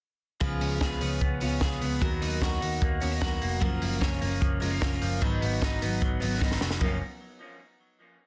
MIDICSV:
0, 0, Header, 1, 5, 480
1, 0, Start_track
1, 0, Key_signature, 6, "major"
1, 0, Tempo, 399467
1, 496, Time_signature, 4, 2, 24, 8
1, 9934, End_track
2, 0, Start_track
2, 0, Title_t, "Steel-string acoustic guitar"
2, 0, Program_c, 0, 25
2, 483, Note_on_c, 0, 49, 75
2, 488, Note_on_c, 0, 56, 76
2, 494, Note_on_c, 0, 59, 85
2, 499, Note_on_c, 0, 65, 78
2, 503, Note_on_c, 0, 71, 87
2, 954, Note_off_c, 0, 56, 0
2, 968, Note_on_c, 0, 56, 61
2, 971, Note_off_c, 0, 49, 0
2, 979, Note_off_c, 0, 65, 0
2, 982, Note_off_c, 0, 59, 0
2, 987, Note_on_c, 0, 59, 62
2, 992, Note_on_c, 0, 65, 68
2, 999, Note_off_c, 0, 71, 0
2, 1004, Note_on_c, 0, 71, 64
2, 1196, Note_off_c, 0, 71, 0
2, 1211, Note_on_c, 0, 71, 51
2, 1213, Note_off_c, 0, 56, 0
2, 1216, Note_off_c, 0, 65, 0
2, 1223, Note_off_c, 0, 59, 0
2, 1230, Note_on_c, 0, 65, 49
2, 1245, Note_on_c, 0, 59, 46
2, 1681, Note_off_c, 0, 71, 0
2, 1686, Note_on_c, 0, 71, 55
2, 1693, Note_off_c, 0, 65, 0
2, 1708, Note_on_c, 0, 65, 48
2, 1719, Note_off_c, 0, 59, 0
2, 1724, Note_on_c, 0, 59, 42
2, 1928, Note_on_c, 0, 56, 58
2, 1931, Note_off_c, 0, 59, 0
2, 1933, Note_off_c, 0, 71, 0
2, 1940, Note_off_c, 0, 65, 0
2, 1945, Note_on_c, 0, 59, 65
2, 1954, Note_on_c, 0, 65, 65
2, 1961, Note_on_c, 0, 71, 69
2, 2411, Note_off_c, 0, 59, 0
2, 2412, Note_on_c, 0, 51, 79
2, 2415, Note_off_c, 0, 56, 0
2, 2421, Note_on_c, 0, 54, 81
2, 2426, Note_off_c, 0, 65, 0
2, 2426, Note_on_c, 0, 59, 78
2, 2431, Note_on_c, 0, 66, 83
2, 2432, Note_off_c, 0, 71, 0
2, 2441, Note_on_c, 0, 70, 91
2, 2886, Note_off_c, 0, 54, 0
2, 2890, Note_on_c, 0, 54, 60
2, 2892, Note_off_c, 0, 59, 0
2, 2898, Note_off_c, 0, 51, 0
2, 2907, Note_on_c, 0, 59, 64
2, 2910, Note_off_c, 0, 66, 0
2, 2915, Note_on_c, 0, 66, 65
2, 2924, Note_off_c, 0, 70, 0
2, 2929, Note_on_c, 0, 70, 63
2, 3113, Note_off_c, 0, 70, 0
2, 3127, Note_on_c, 0, 70, 54
2, 3134, Note_off_c, 0, 66, 0
2, 3137, Note_off_c, 0, 54, 0
2, 3145, Note_off_c, 0, 59, 0
2, 3148, Note_on_c, 0, 66, 46
2, 3163, Note_on_c, 0, 59, 44
2, 3603, Note_off_c, 0, 70, 0
2, 3608, Note_on_c, 0, 70, 51
2, 3629, Note_off_c, 0, 66, 0
2, 3630, Note_off_c, 0, 59, 0
2, 3634, Note_on_c, 0, 66, 48
2, 3645, Note_on_c, 0, 59, 46
2, 3852, Note_off_c, 0, 59, 0
2, 3853, Note_on_c, 0, 54, 65
2, 3857, Note_off_c, 0, 70, 0
2, 3862, Note_off_c, 0, 66, 0
2, 3866, Note_on_c, 0, 59, 63
2, 3877, Note_on_c, 0, 66, 75
2, 3889, Note_on_c, 0, 70, 73
2, 4326, Note_off_c, 0, 54, 0
2, 4326, Note_on_c, 0, 54, 83
2, 4337, Note_off_c, 0, 70, 0
2, 4339, Note_off_c, 0, 59, 0
2, 4339, Note_on_c, 0, 58, 82
2, 4343, Note_off_c, 0, 66, 0
2, 4344, Note_on_c, 0, 61, 92
2, 4348, Note_on_c, 0, 65, 91
2, 4351, Note_on_c, 0, 70, 88
2, 4797, Note_off_c, 0, 58, 0
2, 4808, Note_off_c, 0, 61, 0
2, 4812, Note_on_c, 0, 58, 65
2, 4822, Note_on_c, 0, 61, 67
2, 4823, Note_off_c, 0, 65, 0
2, 4830, Note_off_c, 0, 70, 0
2, 4837, Note_on_c, 0, 65, 63
2, 4847, Note_on_c, 0, 70, 63
2, 4873, Note_off_c, 0, 54, 0
2, 5039, Note_off_c, 0, 70, 0
2, 5053, Note_on_c, 0, 70, 52
2, 5056, Note_off_c, 0, 65, 0
2, 5060, Note_off_c, 0, 58, 0
2, 5065, Note_off_c, 0, 61, 0
2, 5070, Note_on_c, 0, 65, 50
2, 5088, Note_on_c, 0, 61, 47
2, 5512, Note_off_c, 0, 70, 0
2, 5527, Note_on_c, 0, 70, 58
2, 5533, Note_off_c, 0, 65, 0
2, 5547, Note_on_c, 0, 65, 52
2, 5550, Note_off_c, 0, 61, 0
2, 5565, Note_on_c, 0, 61, 47
2, 5771, Note_on_c, 0, 58, 70
2, 5773, Note_off_c, 0, 61, 0
2, 5778, Note_off_c, 0, 70, 0
2, 5783, Note_off_c, 0, 65, 0
2, 5787, Note_on_c, 0, 61, 67
2, 5797, Note_on_c, 0, 65, 72
2, 5806, Note_on_c, 0, 70, 75
2, 6260, Note_off_c, 0, 58, 0
2, 6260, Note_on_c, 0, 44, 79
2, 6268, Note_off_c, 0, 61, 0
2, 6268, Note_on_c, 0, 51, 91
2, 6271, Note_off_c, 0, 65, 0
2, 6271, Note_on_c, 0, 54, 88
2, 6275, Note_on_c, 0, 59, 95
2, 6276, Note_on_c, 0, 63, 95
2, 6278, Note_off_c, 0, 70, 0
2, 6284, Note_on_c, 0, 71, 88
2, 6733, Note_off_c, 0, 54, 0
2, 6738, Note_off_c, 0, 59, 0
2, 6738, Note_on_c, 0, 54, 64
2, 6744, Note_off_c, 0, 44, 0
2, 6749, Note_off_c, 0, 51, 0
2, 6752, Note_on_c, 0, 59, 63
2, 6753, Note_off_c, 0, 63, 0
2, 6757, Note_off_c, 0, 71, 0
2, 6766, Note_on_c, 0, 63, 72
2, 6775, Note_on_c, 0, 71, 68
2, 6966, Note_off_c, 0, 71, 0
2, 6978, Note_off_c, 0, 63, 0
2, 6980, Note_on_c, 0, 71, 53
2, 6983, Note_off_c, 0, 54, 0
2, 6991, Note_off_c, 0, 59, 0
2, 6992, Note_on_c, 0, 63, 56
2, 7007, Note_on_c, 0, 59, 47
2, 7013, Note_on_c, 0, 54, 46
2, 7435, Note_off_c, 0, 71, 0
2, 7447, Note_off_c, 0, 63, 0
2, 7449, Note_on_c, 0, 71, 55
2, 7460, Note_off_c, 0, 59, 0
2, 7461, Note_on_c, 0, 63, 51
2, 7475, Note_on_c, 0, 59, 46
2, 7482, Note_off_c, 0, 54, 0
2, 7487, Note_on_c, 0, 54, 51
2, 7679, Note_off_c, 0, 54, 0
2, 7691, Note_off_c, 0, 59, 0
2, 7694, Note_on_c, 0, 54, 64
2, 7698, Note_off_c, 0, 71, 0
2, 7704, Note_off_c, 0, 63, 0
2, 7705, Note_on_c, 0, 59, 74
2, 7718, Note_on_c, 0, 63, 70
2, 7728, Note_on_c, 0, 71, 68
2, 8179, Note_off_c, 0, 54, 0
2, 8179, Note_on_c, 0, 54, 83
2, 8185, Note_off_c, 0, 59, 0
2, 8188, Note_on_c, 0, 58, 78
2, 8192, Note_off_c, 0, 63, 0
2, 8193, Note_on_c, 0, 61, 84
2, 8197, Note_off_c, 0, 71, 0
2, 8198, Note_on_c, 0, 65, 85
2, 8208, Note_on_c, 0, 70, 94
2, 8374, Note_off_c, 0, 54, 0
2, 8378, Note_off_c, 0, 58, 0
2, 8381, Note_off_c, 0, 61, 0
2, 8383, Note_off_c, 0, 65, 0
2, 8389, Note_off_c, 0, 70, 0
2, 9934, End_track
3, 0, Start_track
3, 0, Title_t, "Clean electric guitar"
3, 0, Program_c, 1, 27
3, 495, Note_on_c, 1, 53, 75
3, 736, Note_on_c, 1, 61, 56
3, 975, Note_on_c, 1, 68, 66
3, 1205, Note_off_c, 1, 61, 0
3, 1219, Note_on_c, 1, 61, 52
3, 1455, Note_on_c, 1, 59, 58
3, 1685, Note_off_c, 1, 61, 0
3, 1700, Note_on_c, 1, 61, 55
3, 1930, Note_off_c, 1, 68, 0
3, 1944, Note_on_c, 1, 68, 57
3, 2165, Note_off_c, 1, 59, 0
3, 2179, Note_on_c, 1, 59, 56
3, 2414, Note_off_c, 1, 53, 0
3, 2419, Note_on_c, 1, 54, 72
3, 2469, Note_off_c, 1, 59, 0
3, 2470, Note_off_c, 1, 61, 0
3, 2471, Note_off_c, 1, 68, 0
3, 2661, Note_on_c, 1, 63, 55
3, 2906, Note_on_c, 1, 66, 64
3, 3128, Note_off_c, 1, 63, 0
3, 3142, Note_on_c, 1, 63, 53
3, 3384, Note_on_c, 1, 58, 59
3, 3615, Note_off_c, 1, 63, 0
3, 3619, Note_on_c, 1, 61, 59
3, 3744, Note_off_c, 1, 61, 0
3, 3744, Note_on_c, 1, 63, 47
3, 3855, Note_off_c, 1, 66, 0
3, 3859, Note_on_c, 1, 66, 61
3, 4094, Note_off_c, 1, 58, 0
3, 4109, Note_on_c, 1, 58, 61
3, 4339, Note_off_c, 1, 54, 0
3, 4344, Note_on_c, 1, 53, 77
3, 4394, Note_off_c, 1, 63, 0
3, 4396, Note_off_c, 1, 58, 0
3, 4589, Note_on_c, 1, 58, 57
3, 4818, Note_on_c, 1, 61, 68
3, 5047, Note_off_c, 1, 58, 0
3, 5061, Note_on_c, 1, 58, 58
3, 5284, Note_off_c, 1, 53, 0
3, 5298, Note_on_c, 1, 53, 63
3, 5334, Note_off_c, 1, 66, 0
3, 5530, Note_off_c, 1, 58, 0
3, 5535, Note_on_c, 1, 56, 62
3, 5656, Note_off_c, 1, 56, 0
3, 5656, Note_on_c, 1, 58, 48
3, 5769, Note_off_c, 1, 61, 0
3, 5784, Note_on_c, 1, 61, 66
3, 6013, Note_off_c, 1, 53, 0
3, 6027, Note_on_c, 1, 53, 58
3, 6260, Note_off_c, 1, 53, 0
3, 6264, Note_on_c, 1, 54, 84
3, 6311, Note_off_c, 1, 58, 0
3, 6315, Note_off_c, 1, 61, 0
3, 6503, Note_on_c, 1, 59, 62
3, 6747, Note_on_c, 1, 63, 68
3, 6979, Note_off_c, 1, 59, 0
3, 6994, Note_on_c, 1, 59, 57
3, 7222, Note_off_c, 1, 54, 0
3, 7227, Note_on_c, 1, 54, 64
3, 7443, Note_off_c, 1, 59, 0
3, 7458, Note_on_c, 1, 59, 63
3, 7689, Note_off_c, 1, 63, 0
3, 7704, Note_on_c, 1, 63, 66
3, 7933, Note_off_c, 1, 54, 0
3, 7938, Note_on_c, 1, 54, 61
3, 8160, Note_off_c, 1, 54, 0
3, 8164, Note_on_c, 1, 53, 82
3, 8177, Note_off_c, 1, 59, 0
3, 8182, Note_on_c, 1, 58, 88
3, 8190, Note_off_c, 1, 63, 0
3, 8194, Note_on_c, 1, 61, 76
3, 8367, Note_off_c, 1, 53, 0
3, 8376, Note_off_c, 1, 58, 0
3, 8382, Note_off_c, 1, 61, 0
3, 9934, End_track
4, 0, Start_track
4, 0, Title_t, "Picked electric bass"
4, 0, Program_c, 2, 34
4, 494, Note_on_c, 2, 37, 96
4, 692, Note_off_c, 2, 37, 0
4, 735, Note_on_c, 2, 37, 81
4, 933, Note_off_c, 2, 37, 0
4, 974, Note_on_c, 2, 37, 98
4, 1173, Note_off_c, 2, 37, 0
4, 1230, Note_on_c, 2, 37, 84
4, 1422, Note_off_c, 2, 37, 0
4, 1462, Note_on_c, 2, 37, 86
4, 1658, Note_off_c, 2, 37, 0
4, 1707, Note_on_c, 2, 37, 77
4, 1901, Note_off_c, 2, 37, 0
4, 2187, Note_on_c, 2, 37, 84
4, 2381, Note_off_c, 2, 37, 0
4, 2429, Note_on_c, 2, 39, 98
4, 2623, Note_off_c, 2, 39, 0
4, 2670, Note_on_c, 2, 39, 98
4, 2864, Note_off_c, 2, 39, 0
4, 2902, Note_on_c, 2, 39, 96
4, 3100, Note_off_c, 2, 39, 0
4, 3158, Note_on_c, 2, 39, 82
4, 3349, Note_off_c, 2, 39, 0
4, 3388, Note_on_c, 2, 39, 94
4, 3584, Note_off_c, 2, 39, 0
4, 3635, Note_on_c, 2, 39, 85
4, 3828, Note_off_c, 2, 39, 0
4, 4115, Note_on_c, 2, 29, 75
4, 4309, Note_off_c, 2, 29, 0
4, 4350, Note_on_c, 2, 30, 104
4, 4546, Note_off_c, 2, 30, 0
4, 4599, Note_on_c, 2, 30, 93
4, 4792, Note_off_c, 2, 30, 0
4, 4822, Note_on_c, 2, 30, 86
4, 5021, Note_off_c, 2, 30, 0
4, 5072, Note_on_c, 2, 30, 96
4, 5268, Note_off_c, 2, 30, 0
4, 5309, Note_on_c, 2, 30, 98
4, 5506, Note_off_c, 2, 30, 0
4, 5551, Note_on_c, 2, 30, 88
4, 5747, Note_off_c, 2, 30, 0
4, 6034, Note_on_c, 2, 30, 91
4, 6229, Note_off_c, 2, 30, 0
4, 6273, Note_on_c, 2, 32, 92
4, 6468, Note_off_c, 2, 32, 0
4, 6515, Note_on_c, 2, 32, 102
4, 6710, Note_off_c, 2, 32, 0
4, 6996, Note_on_c, 2, 32, 86
4, 7190, Note_off_c, 2, 32, 0
4, 7237, Note_on_c, 2, 32, 93
4, 7430, Note_off_c, 2, 32, 0
4, 7479, Note_on_c, 2, 32, 99
4, 7671, Note_off_c, 2, 32, 0
4, 7711, Note_on_c, 2, 32, 96
4, 7906, Note_off_c, 2, 32, 0
4, 7949, Note_on_c, 2, 29, 83
4, 8144, Note_off_c, 2, 29, 0
4, 8191, Note_on_c, 2, 30, 94
4, 8411, Note_off_c, 2, 30, 0
4, 9934, End_track
5, 0, Start_track
5, 0, Title_t, "Drums"
5, 491, Note_on_c, 9, 42, 65
5, 493, Note_on_c, 9, 36, 95
5, 611, Note_off_c, 9, 42, 0
5, 613, Note_off_c, 9, 36, 0
5, 735, Note_on_c, 9, 46, 78
5, 855, Note_off_c, 9, 46, 0
5, 971, Note_on_c, 9, 42, 65
5, 974, Note_on_c, 9, 36, 91
5, 976, Note_on_c, 9, 38, 100
5, 1091, Note_off_c, 9, 42, 0
5, 1094, Note_off_c, 9, 36, 0
5, 1096, Note_off_c, 9, 38, 0
5, 1215, Note_on_c, 9, 46, 68
5, 1335, Note_off_c, 9, 46, 0
5, 1457, Note_on_c, 9, 42, 69
5, 1459, Note_on_c, 9, 36, 96
5, 1577, Note_off_c, 9, 42, 0
5, 1579, Note_off_c, 9, 36, 0
5, 1695, Note_on_c, 9, 46, 69
5, 1815, Note_off_c, 9, 46, 0
5, 1935, Note_on_c, 9, 38, 110
5, 1935, Note_on_c, 9, 42, 70
5, 1939, Note_on_c, 9, 36, 112
5, 2055, Note_off_c, 9, 38, 0
5, 2055, Note_off_c, 9, 42, 0
5, 2059, Note_off_c, 9, 36, 0
5, 2182, Note_on_c, 9, 46, 68
5, 2302, Note_off_c, 9, 46, 0
5, 2423, Note_on_c, 9, 36, 104
5, 2425, Note_on_c, 9, 42, 63
5, 2543, Note_off_c, 9, 36, 0
5, 2545, Note_off_c, 9, 42, 0
5, 2668, Note_on_c, 9, 46, 77
5, 2788, Note_off_c, 9, 46, 0
5, 2903, Note_on_c, 9, 36, 98
5, 2905, Note_on_c, 9, 42, 75
5, 2910, Note_on_c, 9, 38, 101
5, 3023, Note_off_c, 9, 36, 0
5, 3025, Note_off_c, 9, 42, 0
5, 3030, Note_off_c, 9, 38, 0
5, 3150, Note_on_c, 9, 46, 69
5, 3270, Note_off_c, 9, 46, 0
5, 3386, Note_on_c, 9, 36, 103
5, 3386, Note_on_c, 9, 42, 63
5, 3506, Note_off_c, 9, 42, 0
5, 3507, Note_off_c, 9, 36, 0
5, 3623, Note_on_c, 9, 46, 69
5, 3743, Note_off_c, 9, 46, 0
5, 3864, Note_on_c, 9, 38, 105
5, 3865, Note_on_c, 9, 36, 116
5, 3985, Note_off_c, 9, 36, 0
5, 3985, Note_off_c, 9, 38, 0
5, 4106, Note_on_c, 9, 46, 72
5, 4226, Note_off_c, 9, 46, 0
5, 4345, Note_on_c, 9, 36, 100
5, 4350, Note_on_c, 9, 42, 64
5, 4466, Note_off_c, 9, 36, 0
5, 4470, Note_off_c, 9, 42, 0
5, 4588, Note_on_c, 9, 46, 82
5, 4708, Note_off_c, 9, 46, 0
5, 4824, Note_on_c, 9, 36, 98
5, 4825, Note_on_c, 9, 42, 68
5, 4830, Note_on_c, 9, 38, 105
5, 4945, Note_off_c, 9, 36, 0
5, 4945, Note_off_c, 9, 42, 0
5, 4950, Note_off_c, 9, 38, 0
5, 5069, Note_on_c, 9, 46, 70
5, 5189, Note_off_c, 9, 46, 0
5, 5309, Note_on_c, 9, 36, 109
5, 5311, Note_on_c, 9, 42, 69
5, 5429, Note_off_c, 9, 36, 0
5, 5432, Note_off_c, 9, 42, 0
5, 5551, Note_on_c, 9, 46, 73
5, 5671, Note_off_c, 9, 46, 0
5, 5789, Note_on_c, 9, 36, 104
5, 5790, Note_on_c, 9, 38, 110
5, 5909, Note_off_c, 9, 36, 0
5, 5910, Note_off_c, 9, 38, 0
5, 6029, Note_on_c, 9, 46, 73
5, 6150, Note_off_c, 9, 46, 0
5, 6270, Note_on_c, 9, 42, 61
5, 6271, Note_on_c, 9, 36, 104
5, 6390, Note_off_c, 9, 42, 0
5, 6391, Note_off_c, 9, 36, 0
5, 6516, Note_on_c, 9, 46, 81
5, 6636, Note_off_c, 9, 46, 0
5, 6751, Note_on_c, 9, 36, 100
5, 6753, Note_on_c, 9, 42, 75
5, 6758, Note_on_c, 9, 38, 112
5, 6871, Note_off_c, 9, 36, 0
5, 6873, Note_off_c, 9, 42, 0
5, 6878, Note_off_c, 9, 38, 0
5, 6995, Note_on_c, 9, 46, 68
5, 7115, Note_off_c, 9, 46, 0
5, 7233, Note_on_c, 9, 36, 111
5, 7235, Note_on_c, 9, 42, 67
5, 7353, Note_off_c, 9, 36, 0
5, 7355, Note_off_c, 9, 42, 0
5, 7472, Note_on_c, 9, 46, 70
5, 7593, Note_off_c, 9, 46, 0
5, 7708, Note_on_c, 9, 36, 111
5, 7709, Note_on_c, 9, 38, 55
5, 7825, Note_off_c, 9, 38, 0
5, 7825, Note_on_c, 9, 38, 54
5, 7828, Note_off_c, 9, 36, 0
5, 7942, Note_off_c, 9, 38, 0
5, 7942, Note_on_c, 9, 38, 81
5, 8058, Note_off_c, 9, 38, 0
5, 8058, Note_on_c, 9, 38, 83
5, 8178, Note_off_c, 9, 38, 0
5, 8180, Note_on_c, 9, 49, 71
5, 8185, Note_on_c, 9, 36, 90
5, 8300, Note_off_c, 9, 49, 0
5, 8305, Note_off_c, 9, 36, 0
5, 9934, End_track
0, 0, End_of_file